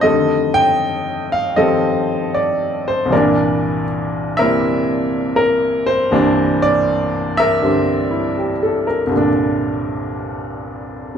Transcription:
0.01 F2 D#3 G3 A4 D#5
0.05 D3 A3
0.54 G5
1.32 F5
1.56 D#3 F3 G3 C4 A4 D#5
2.34 D5
2.88 C5
3.05 C2 G2
3.10 A#2 E3 A#4 D5
3.17 D4
4.37 C3 G3 A#3 C4 A#4 E5
4.41 E4
5.36 A#4
5.86 C5
6.11 C2 G2 E3 A#3 D4
6.62 D5
7.37 A#4 E5
7.61 G2 D3 G3 C4
8.11 E4
8.38 G4
8.63 A4
8.87 A#4
9.07 C2 G2
9.12 A#2 D3
9.18 D4

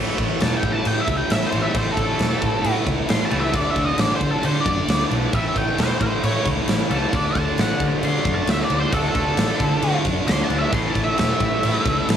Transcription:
Already playing: A1 A2 E3
0.00 A3
0.18 A1, kick, crash
0.40 E1 A5, snare, crash
0.57 G5
0.63 A2, kick, crash
0.72 A5
0.85 A2 G5, crash
1.01 E5
1.08 C#2, kick, crash
1.17 G5
1.30 A1 E5, snare, crash
1.43 C5, snare
1.51 A1 A2 E3 A3, crash
1.62 E5
1.74 A1 A2 E3 A3 C5, kick, crash
1.91 A4
1.97 A1, kick, crash
2.19 E1, snare, crash
2.42 A2, kick, crash
2.64 A2, crash
2.87 C#2, kick, crash
3.09 A1 C6, snare, crash
3.25 A5
3.29 C#2 A2 E3 A3, crash
3.41 E5
3.51 D2 D3 A3 D4 D5, kick, crash
3.70 E5
3.76 D2, kick, crash
3.85 D#5
3.98 A1 D5, snare, crash
4.16 C5
4.21 D3, kick, crash
4.31 A4
4.43 D3 C5, crash
4.60 D5
4.66 F#2, kick, crash
4.88 D2, snare, crash
5.09 B1 D3 A3 D4, crash
5.32 A1 A2 E3 A3 E5, kick, crash
5.56 A1 G5, kick, crash
5.78 E1 C5, snare, crash
6.01 A2 C5, kick, crash
6.23 A2 C#5, crash
6.45 C#2, kick, crash
6.68 A1, snare, crash
6.89 C#2 A2 E3 A3 A5, crash
7.12 D2 D3 A3 D4 D5, kick, crash
7.35 D2 A5, kick, crash
7.58 A1 F#5, snare, crash
7.80 D3, kick, crash
8.03 D3 C6, crash
8.25 F#2, kick, crash
8.35 A5
8.47 D2 E5, snare, crash
8.60 D5, snare
8.69 D2 D3 A3 D4, crash
8.79 C5
8.92 D2 D3 A3 D4 A4, kick, crash
9.09 A4
9.15 D2, kick, crash
9.37 A1, snare, crash
9.60 D3, kick, crash
9.82 D3, crash
10.05 F#2, kick, crash
10.27 D2 C6, snare, crash
10.43 A5
10.49 D2 D3 A3 D4, crash
10.58 E5
10.71 A1 A2 E3 A3 C6, kick, crash
10.89 A5
10.95 A1, kick, crash
11.04 E5
11.18 E1 E5, snare, crash
11.40 A2, kick, crash
11.63 A2, crash
11.86 C#2, kick, crash
12.09 A1, snare, crash

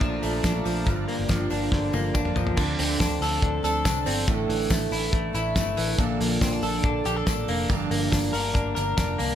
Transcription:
Already playing: A#2 F3 A3 D4 F4 D5 A5 A#5
0.00 A#1 F3, kick, closed hi-hat, tambourine
0.22 A#1 A#2 F3 A3 D4, open hi-hat, tambourine
0.43 A#1 D4, kick, snare, closed hi-hat, tambourine
0.54 F3 A3 D4
0.65 A#1 F3, open hi-hat, tambourine
0.86 G1 G2 D3 F3 A#3 D4 G5, kick, closed hi-hat, tambourine
1.08 A#3, open hi-hat
1.19 G1
1.29 G1 D3 F3 A#3 D4, kick, snare, closed hi-hat, tambourine
1.50 G1 D3 F3 A#3 D4, open hi-hat, tambourine
1.72 G1 D3, kick, snare
1.93 G1 D3 F3 A#3 D4, high tom, tambourine
2.14 G1 D4, kick, mid tom, tambourine
2.25 F3 A#3 D4, mid tom
2.35 G1 F3, floor tom, tambourine
2.47 floor tom
2.57 D2 D3 F3 C4 D4 A4, kick, crash, tambourine
2.79 D2 C4, hi-hat pedal, open hi-hat, tambourine
3.00 D2 D4, kick, snare, hi-hat pedal, open hi-hat, tambourine
3.20 D2 F3 C4 D4 A4, hi-hat pedal, open hi-hat, tambourine
3.42 D2 D4, kick, hi-hat pedal, open hi-hat
3.63 D2 F3 C4 D4 A4, hi-hat pedal, open hi-hat, tambourine
3.84 C2 F3 C4 D4 A4, kick, snare, hi-hat pedal, open hi-hat, tambourine
4.05 G1 F3 C4 D4 A4, hi-hat pedal, open hi-hat, tambourine
4.27 A1 A2 D3 E3 A3 E4, kick, hi-hat pedal, open hi-hat, tambourine
4.49 A1 E3, hi-hat pedal, open hi-hat
4.70 A1 A3, kick, snare, hi-hat pedal, open hi-hat, tambourine
4.91 A1 D3 E3 A3 E4, hi-hat pedal, open hi-hat, tambourine
5.13 A1 A3, kick, hi-hat pedal, open hi-hat, tambourine
5.33 A1 D3 E3 A3 E4, hi-hat pedal, open hi-hat, tambourine
5.55 G1 D3 E3 A3 E4, kick, snare, hi-hat pedal, open hi-hat, tambourine
5.76 A1 D3 E3 A3 E4, hi-hat pedal, open hi-hat, tambourine
5.97 A#1 A#2 D3 F3 A#3 D4 A4, kick, hi-hat pedal, open hi-hat, tambourine
6.20 A#1 A#3, hi-hat pedal, open hi-hat
6.41 A#1 C4, kick, snare, hi-hat pedal, open hi-hat, tambourine
6.53 D4
6.62 A#1 F3 A#3 D4 A4, hi-hat pedal, open hi-hat, tambourine
6.83 A#1 D4, kick, hi-hat pedal, open hi-hat
7.04 A#1 F3 A#3 D4 G4 A4, hi-hat pedal, open hi-hat, tambourine
7.16 A4
7.26 A1 F3 A#3 D4 A4, kick, snare, hi-hat pedal, open hi-hat, tambourine
7.47 F1 F3 A#3 D4 A4, hi-hat pedal, open hi-hat, tambourine
7.69 G1 G2 D3 F3 A#3 D4 A#4, kick, hi-hat pedal, open hi-hat, tambourine
7.91 G1 A#3, hi-hat pedal, open hi-hat, tambourine
8.12 G1 D4, kick, snare, hi-hat pedal, open hi-hat, tambourine
8.33 G1 F3 A#3 D4 A#4, hi-hat pedal, open hi-hat, tambourine
8.54 G1 D4, kick, hi-hat pedal, open hi-hat, tambourine
8.75 G1 F3 A#3 D4 A#4, hi-hat pedal, open hi-hat, tambourine
8.97 F1 F3 A#3 D4 A#4, kick, snare, hi-hat pedal, open hi-hat, tambourine
9.18 C2 F3 A#3 D4 A#4, hi-hat pedal, open hi-hat, tambourine

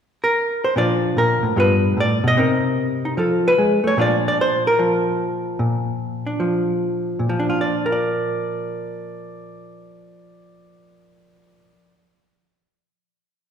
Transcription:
0.24 A#4
0.64 C5
0.76 A#2 F3 D4 F4 D5
1.17 A#2 A#4
1.43 A2
1.56 G2 B3 F4 B4
1.97 A2 D5
2.24 B2
2.28 D#5
2.37 C3 C4 D#4 A#4
3.05 D#4
3.17 F3 F4 A4
3.48 B4
3.58 G#3
3.84 A3 C#5
3.97 A#2 F3 D4 F4
4.01 D5
4.28 D5
4.41 C5
4.67 A#4
4.79 F3
5.59 A#2
6.27 D4
6.40 F3
7.19 A#2
7.29 F3
7.40 D4
7.50 F4
7.61 D5
7.86 A#4
7.92 D5

